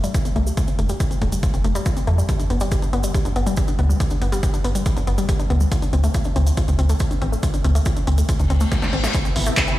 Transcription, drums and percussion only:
0.04 closed hi-hat, cabasa
0.14 kick, closed hi-hat, cabasa
0.25 closed hi-hat, cabasa
0.36 closed hi-hat
0.47 cabasa
0.57 kick, closed hi-hat, cabasa
0.68 closed hi-hat, cabasa
0.79 closed hi-hat
0.89 closed hi-hat, cabasa
1.00 kick, closed hi-hat, cabasa
1.11 closed hi-hat, cabasa
1.22 kick, closed hi-hat
1.32 closed hi-hat, cabasa
1.43 kick, closed hi-hat, cabasa
1.54 closed hi-hat, cabasa
1.64 closed hi-hat
1.75 closed hi-hat, cabasa
1.86 kick, closed hi-hat, cabasa
1.97 closed hi-hat, cabasa
2.07 closed hi-hat
2.19 cabasa
2.29 kick, closed hi-hat, cabasa
2.40 closed hi-hat, cabasa
2.50 closed hi-hat
2.60 closed hi-hat, cabasa
2.72 kick, closed hi-hat, cabasa
2.82 closed hi-hat, cabasa
2.93 closed hi-hat
3.03 closed hi-hat, cabasa
3.14 kick, closed hi-hat, cabasa
3.25 closed hi-hat, cabasa
3.36 closed hi-hat
3.47 closed hi-hat, cabasa
3.57 kick, closed hi-hat, cabasa
3.68 closed hi-hat, cabasa
3.79 closed hi-hat
3.90 cabasa
4.00 kick, closed hi-hat, cabasa
4.10 closed hi-hat, cabasa
4.22 closed hi-hat
4.32 closed hi-hat, cabasa
4.43 kick, closed hi-hat, cabasa
4.54 closed hi-hat, cabasa
4.64 closed hi-hat
4.75 closed hi-hat, cabasa
4.86 kick, closed hi-hat, cabasa
4.97 closed hi-hat, cabasa
5.07 closed hi-hat
5.18 closed hi-hat, cabasa
5.29 kick, closed hi-hat, cabasa
5.40 closed hi-hat, cabasa
5.50 closed hi-hat
5.60 cabasa
5.72 kick, closed hi-hat, cabasa
5.82 closed hi-hat, cabasa
5.93 closed hi-hat
6.04 closed hi-hat, cabasa
6.14 kick, closed hi-hat, cabasa
6.24 closed hi-hat, cabasa
6.36 closed hi-hat
6.47 closed hi-hat, cabasa
6.57 kick, closed hi-hat, cabasa
6.68 closed hi-hat, cabasa
6.79 closed hi-hat
6.89 closed hi-hat, cabasa
6.99 kick, closed hi-hat, cabasa
7.11 closed hi-hat, cabasa
7.22 closed hi-hat
7.33 cabasa
7.43 kick, closed hi-hat, cabasa
7.54 closed hi-hat, cabasa
7.64 closed hi-hat
7.75 closed hi-hat, cabasa
7.86 kick, closed hi-hat, cabasa
7.96 closed hi-hat, cabasa
8.07 closed hi-hat
8.18 closed hi-hat, cabasa
8.29 kick, closed hi-hat, cabasa
8.39 closed hi-hat, cabasa
8.50 closed hi-hat
8.60 closed hi-hat, cabasa
8.72 kick, snare, closed hi-hat, cabasa
8.82 snare, closed hi-hat, cabasa
8.93 closed hi-hat
9.04 snare, closed hi-hat, cabasa
9.14 kick, closed hi-hat, cabasa
9.25 closed hi-hat, cabasa
9.36 open hi-hat
9.46 closed hi-hat, cabasa
9.57 kick, clap, closed hi-hat, cabasa
9.67 closed hi-hat, cabasa

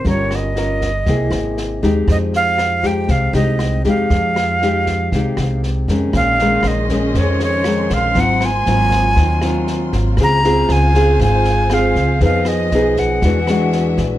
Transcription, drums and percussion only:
0.05 kick, snare
0.31 cross-stick, snare
0.56 snare
0.81 kick, snare
1.06 kick, snare
1.31 cross-stick, snare
1.57 snare
1.82 kick, snare
2.08 kick, cross-stick, snare
2.33 snare
2.58 cross-stick, snare
2.83 kick, snare
3.08 kick, snare
3.34 snare
3.59 cross-stick, snare
3.84 kick, snare
4.10 kick, snare
4.36 cross-stick, snare
4.62 snare
4.86 kick, snare
5.12 kick, snare
5.37 cross-stick, snare
5.63 snare
5.88 kick, snare
6.13 kick, cross-stick, snare
6.39 snare
6.63 cross-stick, snare
6.89 kick, snare
7.14 kick, snare
7.40 snare
7.64 cross-stick, snare
7.90 kick, snare
8.15 kick, snare
8.41 cross-stick, snare
8.66 snare
8.91 kick, snare
9.16 kick, snare
9.41 cross-stick, snare
9.67 snare
9.93 kick, snare
10.17 kick, cross-stick, snare
10.44 snare
10.69 cross-stick, snare
10.94 kick, snare
11.20 kick, snare
11.45 snare
11.70 cross-stick, snare
11.96 kick, snare
12.20 kick, snare
12.45 cross-stick, snare
12.71 snare
12.97 kick, snare
13.22 kick, snare
13.47 cross-stick, snare
13.72 snare
13.98 kick, snare

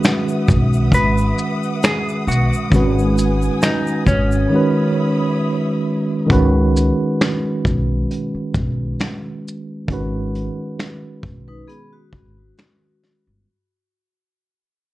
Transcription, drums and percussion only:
0.04 finger snap, snare, shaker
0.08 closed hi-hat
0.28 shaker
0.48 kick, shaker
0.50 shaker
0.73 shaker
0.92 kick, closed hi-hat, shaker
1.18 shaker
1.38 shaker
1.63 shaker
1.83 finger snap, snare, closed hi-hat, shaker
2.09 shaker
2.28 shaker
2.32 shaker
2.53 shaker
2.72 kick, closed hi-hat, shaker
2.99 shaker
3.18 closed hi-hat, shaker
3.42 shaker
3.62 finger snap, snare, closed hi-hat, shaker
3.87 shaker
4.07 kick, shaker
4.32 shaker
6.30 kick, closed hi-hat
6.77 closed hi-hat, shaker
7.21 finger snap, snare, closed hi-hat
7.65 kick, shaker
8.11 closed hi-hat
8.54 kick, shaker
8.99 finger snap, snare, closed hi-hat
9.48 shaker
9.88 kick, closed hi-hat
10.35 closed hi-hat
10.79 finger snap, snare, closed hi-hat
11.23 kick
11.69 closed hi-hat
12.13 kick
12.58 finger snap, snare, closed hi-hat
13.03 snare

